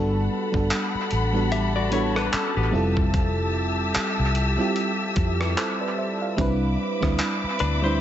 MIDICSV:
0, 0, Header, 1, 7, 480
1, 0, Start_track
1, 0, Tempo, 810811
1, 1859, Time_signature, 4, 2, 24, 8
1, 4741, End_track
2, 0, Start_track
2, 0, Title_t, "String section"
2, 0, Program_c, 0, 48
2, 0, Note_on_c, 0, 55, 89
2, 0, Note_on_c, 0, 78, 84
2, 0, Note_on_c, 0, 81, 78
2, 0, Note_on_c, 0, 83, 97
2, 1601, Note_off_c, 0, 55, 0
2, 1601, Note_off_c, 0, 78, 0
2, 1601, Note_off_c, 0, 83, 0
2, 1616, Note_on_c, 0, 67, 84
2, 1617, Note_on_c, 0, 76, 81
2, 1618, Note_on_c, 0, 88, 99
2, 3754, Note_off_c, 0, 81, 0
2, 3756, Note_off_c, 0, 67, 0
2, 3756, Note_off_c, 0, 76, 0
2, 3757, Note_off_c, 0, 88, 0
2, 3776, Note_on_c, 0, 83, 82
2, 3777, Note_on_c, 0, 60, 88
2, 3777, Note_on_c, 0, 76, 83
2, 3777, Note_on_c, 0, 86, 97
2, 4741, Note_off_c, 0, 60, 0
2, 4741, Note_off_c, 0, 76, 0
2, 4741, Note_off_c, 0, 83, 0
2, 4741, Note_off_c, 0, 86, 0
2, 4741, End_track
3, 0, Start_track
3, 0, Title_t, "Clean electric guitar"
3, 0, Program_c, 1, 27
3, 899, Note_on_c, 1, 76, 74
3, 903, Note_on_c, 1, 67, 68
3, 1031, Note_off_c, 1, 76, 0
3, 1033, Note_off_c, 1, 67, 0
3, 1040, Note_on_c, 1, 74, 85
3, 1044, Note_on_c, 1, 66, 76
3, 1135, Note_off_c, 1, 74, 0
3, 1137, Note_off_c, 1, 66, 0
3, 1141, Note_on_c, 1, 73, 88
3, 1144, Note_on_c, 1, 64, 74
3, 1272, Note_off_c, 1, 73, 0
3, 1274, Note_off_c, 1, 64, 0
3, 1280, Note_on_c, 1, 71, 94
3, 1284, Note_on_c, 1, 62, 80
3, 1375, Note_off_c, 1, 71, 0
3, 1377, Note_off_c, 1, 62, 0
3, 1380, Note_on_c, 1, 69, 88
3, 1383, Note_on_c, 1, 61, 70
3, 1511, Note_off_c, 1, 69, 0
3, 1513, Note_off_c, 1, 61, 0
3, 1520, Note_on_c, 1, 67, 83
3, 1523, Note_on_c, 1, 59, 67
3, 1747, Note_off_c, 1, 67, 0
3, 1749, Note_off_c, 1, 59, 0
3, 4500, Note_on_c, 1, 71, 85
3, 4503, Note_on_c, 1, 62, 70
3, 4632, Note_off_c, 1, 71, 0
3, 4633, Note_off_c, 1, 62, 0
3, 4640, Note_on_c, 1, 72, 87
3, 4643, Note_on_c, 1, 64, 73
3, 4735, Note_off_c, 1, 72, 0
3, 4736, Note_off_c, 1, 64, 0
3, 4741, End_track
4, 0, Start_track
4, 0, Title_t, "FM electric piano"
4, 0, Program_c, 2, 5
4, 0, Note_on_c, 2, 55, 105
4, 0, Note_on_c, 2, 59, 105
4, 0, Note_on_c, 2, 62, 97
4, 0, Note_on_c, 2, 66, 106
4, 0, Note_on_c, 2, 69, 118
4, 51, Control_c, 2, 64, 127
4, 230, Note_off_c, 2, 55, 0
4, 234, Note_off_c, 2, 59, 0
4, 237, Note_off_c, 2, 62, 0
4, 241, Note_off_c, 2, 66, 0
4, 244, Note_off_c, 2, 69, 0
4, 307, Note_on_c, 2, 55, 88
4, 313, Note_on_c, 2, 59, 78
4, 320, Note_on_c, 2, 62, 77
4, 325, Note_on_c, 2, 66, 76
4, 333, Note_on_c, 2, 69, 96
4, 682, Note_off_c, 2, 55, 0
4, 685, Note_off_c, 2, 59, 0
4, 689, Note_off_c, 2, 62, 0
4, 692, Note_off_c, 2, 66, 0
4, 695, Note_off_c, 2, 69, 0
4, 784, Note_on_c, 2, 55, 87
4, 790, Note_on_c, 2, 59, 82
4, 798, Note_on_c, 2, 62, 78
4, 804, Note_on_c, 2, 66, 84
4, 810, Note_on_c, 2, 69, 92
4, 1072, Note_off_c, 2, 55, 0
4, 1075, Note_off_c, 2, 59, 0
4, 1079, Note_off_c, 2, 62, 0
4, 1082, Note_off_c, 2, 66, 0
4, 1085, Note_off_c, 2, 69, 0
4, 1124, Note_on_c, 2, 55, 88
4, 1131, Note_on_c, 2, 59, 81
4, 1136, Note_on_c, 2, 62, 85
4, 1142, Note_on_c, 2, 66, 87
4, 1150, Note_on_c, 2, 69, 100
4, 1599, Note_off_c, 2, 55, 0
4, 1606, Note_on_c, 2, 55, 99
4, 1612, Note_on_c, 2, 60, 90
4, 1615, Note_off_c, 2, 59, 0
4, 1617, Note_off_c, 2, 62, 0
4, 1617, Note_on_c, 2, 64, 86
4, 1620, Note_off_c, 2, 66, 0
4, 1623, Note_off_c, 2, 69, 0
4, 1624, Note_on_c, 2, 65, 88
4, 1625, Control_c, 2, 64, 0
4, 1630, Note_on_c, 2, 69, 100
4, 1746, Control_c, 2, 64, 127
4, 2390, Note_off_c, 2, 55, 0
4, 2394, Note_off_c, 2, 60, 0
4, 2396, Note_off_c, 2, 64, 0
4, 2400, Note_off_c, 2, 65, 0
4, 2403, Note_off_c, 2, 69, 0
4, 2705, Note_on_c, 2, 55, 88
4, 2711, Note_on_c, 2, 60, 80
4, 2717, Note_on_c, 2, 64, 80
4, 2724, Note_on_c, 2, 65, 81
4, 2730, Note_on_c, 2, 67, 93
4, 2993, Note_off_c, 2, 55, 0
4, 2995, Note_off_c, 2, 60, 0
4, 2998, Note_off_c, 2, 64, 0
4, 3002, Note_off_c, 2, 65, 0
4, 3005, Note_off_c, 2, 67, 0
4, 3198, Note_on_c, 2, 71, 68
4, 3201, Note_on_c, 2, 67, 59
4, 3294, Note_off_c, 2, 71, 0
4, 3295, Note_off_c, 2, 67, 0
4, 3297, Note_on_c, 2, 72, 72
4, 3301, Note_on_c, 2, 69, 62
4, 3430, Note_off_c, 2, 72, 0
4, 3432, Note_off_c, 2, 69, 0
4, 3439, Note_on_c, 2, 74, 76
4, 3442, Note_on_c, 2, 71, 65
4, 3534, Note_off_c, 2, 74, 0
4, 3536, Note_off_c, 2, 71, 0
4, 3541, Note_on_c, 2, 76, 73
4, 3544, Note_on_c, 2, 72, 64
4, 3672, Note_off_c, 2, 76, 0
4, 3674, Note_off_c, 2, 72, 0
4, 3680, Note_on_c, 2, 77, 68
4, 3683, Note_on_c, 2, 74, 56
4, 3769, Note_on_c, 2, 55, 107
4, 3775, Note_on_c, 2, 60, 101
4, 3782, Note_on_c, 2, 62, 104
4, 3787, Control_c, 2, 64, 0
4, 3787, Note_on_c, 2, 64, 101
4, 3794, Note_on_c, 2, 71, 121
4, 3895, Control_c, 2, 64, 127
4, 3907, Note_off_c, 2, 77, 0
4, 3909, Note_off_c, 2, 74, 0
4, 4070, Note_off_c, 2, 55, 0
4, 4074, Note_off_c, 2, 60, 0
4, 4077, Note_off_c, 2, 62, 0
4, 4080, Note_off_c, 2, 64, 0
4, 4083, Note_off_c, 2, 71, 0
4, 4146, Note_on_c, 2, 55, 89
4, 4153, Note_on_c, 2, 60, 82
4, 4158, Note_on_c, 2, 62, 80
4, 4165, Note_on_c, 2, 64, 81
4, 4172, Note_on_c, 2, 71, 89
4, 4522, Note_off_c, 2, 55, 0
4, 4525, Note_off_c, 2, 60, 0
4, 4528, Note_off_c, 2, 62, 0
4, 4531, Note_off_c, 2, 64, 0
4, 4535, Note_off_c, 2, 71, 0
4, 4630, Note_on_c, 2, 55, 88
4, 4635, Note_on_c, 2, 60, 81
4, 4641, Note_on_c, 2, 62, 82
4, 4647, Note_on_c, 2, 64, 81
4, 4654, Note_on_c, 2, 71, 96
4, 4741, Note_off_c, 2, 55, 0
4, 4741, Note_off_c, 2, 60, 0
4, 4741, Note_off_c, 2, 62, 0
4, 4741, Note_off_c, 2, 64, 0
4, 4741, Note_off_c, 2, 71, 0
4, 4741, End_track
5, 0, Start_track
5, 0, Title_t, "Fingered electric bass"
5, 0, Program_c, 3, 33
5, 0, Note_on_c, 3, 31, 116
5, 157, Note_off_c, 3, 31, 0
5, 321, Note_on_c, 3, 31, 97
5, 411, Note_off_c, 3, 31, 0
5, 664, Note_on_c, 3, 33, 97
5, 1358, Note_off_c, 3, 33, 0
5, 1520, Note_on_c, 3, 33, 92
5, 1610, Note_off_c, 3, 33, 0
5, 1619, Note_on_c, 3, 29, 103
5, 2315, Note_off_c, 3, 29, 0
5, 2482, Note_on_c, 3, 36, 92
5, 2698, Note_off_c, 3, 36, 0
5, 3060, Note_on_c, 3, 41, 98
5, 3278, Note_off_c, 3, 41, 0
5, 3780, Note_on_c, 3, 36, 113
5, 3998, Note_off_c, 3, 36, 0
5, 4161, Note_on_c, 3, 38, 103
5, 4251, Note_off_c, 3, 38, 0
5, 4503, Note_on_c, 3, 38, 89
5, 4741, Note_off_c, 3, 38, 0
5, 4741, End_track
6, 0, Start_track
6, 0, Title_t, "Muted fingered electric bass strokes"
6, 561, Note_on_c, 9, 29, 45
6, 620, Note_off_c, 9, 29, 0
6, 1381, Note_on_c, 9, 29, 49
6, 1440, Note_off_c, 9, 29, 0
6, 2342, Note_on_c, 9, 29, 54
6, 2401, Note_off_c, 9, 29, 0
6, 4403, Note_on_c, 9, 29, 46
6, 4462, Note_off_c, 9, 29, 0
6, 4741, End_track
7, 0, Start_track
7, 0, Title_t, "Drums"
7, 320, Note_on_c, 9, 36, 86
7, 379, Note_off_c, 9, 36, 0
7, 415, Note_on_c, 9, 42, 65
7, 420, Note_on_c, 9, 39, 115
7, 474, Note_off_c, 9, 42, 0
7, 479, Note_off_c, 9, 39, 0
7, 655, Note_on_c, 9, 42, 63
7, 714, Note_off_c, 9, 42, 0
7, 899, Note_on_c, 9, 42, 70
7, 958, Note_off_c, 9, 42, 0
7, 1135, Note_on_c, 9, 42, 66
7, 1195, Note_off_c, 9, 42, 0
7, 1280, Note_on_c, 9, 37, 95
7, 1340, Note_off_c, 9, 37, 0
7, 1380, Note_on_c, 9, 39, 111
7, 1383, Note_on_c, 9, 42, 70
7, 1440, Note_off_c, 9, 39, 0
7, 1442, Note_off_c, 9, 42, 0
7, 1757, Note_on_c, 9, 36, 100
7, 1816, Note_off_c, 9, 36, 0
7, 1857, Note_on_c, 9, 42, 72
7, 1858, Note_on_c, 9, 36, 119
7, 1917, Note_off_c, 9, 36, 0
7, 1917, Note_off_c, 9, 42, 0
7, 2335, Note_on_c, 9, 42, 64
7, 2340, Note_on_c, 9, 39, 113
7, 2394, Note_off_c, 9, 42, 0
7, 2399, Note_off_c, 9, 39, 0
7, 2575, Note_on_c, 9, 42, 60
7, 2634, Note_off_c, 9, 42, 0
7, 2817, Note_on_c, 9, 42, 71
7, 2876, Note_off_c, 9, 42, 0
7, 3054, Note_on_c, 9, 42, 64
7, 3058, Note_on_c, 9, 36, 93
7, 3114, Note_off_c, 9, 42, 0
7, 3117, Note_off_c, 9, 36, 0
7, 3201, Note_on_c, 9, 37, 99
7, 3260, Note_off_c, 9, 37, 0
7, 3302, Note_on_c, 9, 39, 109
7, 3304, Note_on_c, 9, 42, 74
7, 3361, Note_off_c, 9, 39, 0
7, 3363, Note_off_c, 9, 42, 0
7, 3779, Note_on_c, 9, 36, 114
7, 3779, Note_on_c, 9, 42, 78
7, 3838, Note_off_c, 9, 36, 0
7, 3838, Note_off_c, 9, 42, 0
7, 4159, Note_on_c, 9, 36, 87
7, 4161, Note_on_c, 9, 37, 64
7, 4218, Note_off_c, 9, 36, 0
7, 4221, Note_off_c, 9, 37, 0
7, 4254, Note_on_c, 9, 42, 65
7, 4258, Note_on_c, 9, 39, 113
7, 4313, Note_off_c, 9, 42, 0
7, 4318, Note_off_c, 9, 39, 0
7, 4495, Note_on_c, 9, 42, 63
7, 4554, Note_off_c, 9, 42, 0
7, 4741, End_track
0, 0, End_of_file